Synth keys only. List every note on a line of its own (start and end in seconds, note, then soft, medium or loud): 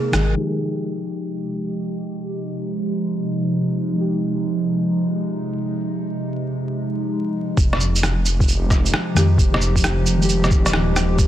0.00 0.12 A#3 medium
0.00 0.13 G#4 loud
0.11 0.58 D#3 medium
0.11 0.33 G#3 medium
0.16 0.60 G#4 loud
0.32 3.91 F3 medium
0.32 3.94 G#3 medium
0.37 3.96 D#4 medium
0.37 3.97 G4 medium
3.92 7.54 F3 medium
3.92 7.55 G#3 medium
3.98 7.57 D#4 medium
3.98 7.58 G4 medium
9.14 9.22 D#3 medium
9.14 9.23 G#3 medium
9.14 9.24 G4 loud
10.16 11.28 D#3 medium
10.21 11.28 G#3 medium
10.21 11.28 G4 loud